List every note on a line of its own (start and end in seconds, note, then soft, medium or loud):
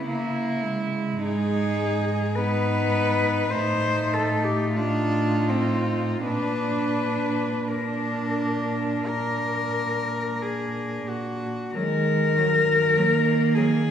0.00 1.22 C#3 soft
0.08 0.66 A#3 medium
0.08 1.20 E4 medium
0.64 2.39 G#3 medium
1.21 3.49 G#2 medium
1.21 2.33 D#4 medium
1.21 2.37 G#4 medium
2.35 3.51 B3 medium
2.35 3.51 D#4 medium
2.35 3.52 B4 medium
3.51 6.23 A2 medium
3.51 4.78 A3 medium
3.51 4.75 D#4 medium
3.51 4.15 C5 medium
4.13 4.45 A4 medium
4.44 4.75 G4 medium
4.76 5.51 D4 medium
4.76 6.29 D#4 medium
4.76 6.24 F4 medium
5.50 6.25 C4 soft
6.26 11.49 A#2 soft
6.26 7.51 D4 medium
6.26 7.68 D4 soft
6.26 7.69 B4 medium
7.67 9.08 D4 soft
7.67 11.50 D4 soft
7.67 11.09 A#4 medium
9.07 10.43 A#4 medium
10.42 11.11 G#4 soft
11.09 11.74 F#4 soft
11.74 12.82 D#3 medium
11.74 11.83 F#3 medium
11.74 12.38 G#3 medium
11.74 13.56 A#4 medium
12.36 12.97 F#3 medium
12.36 12.45 F#3 medium
12.96 13.91 D#3 medium
12.96 13.05 F#3 medium
12.96 13.91 A#3 medium
13.55 13.65 F#3 medium
13.55 13.91 G#4 medium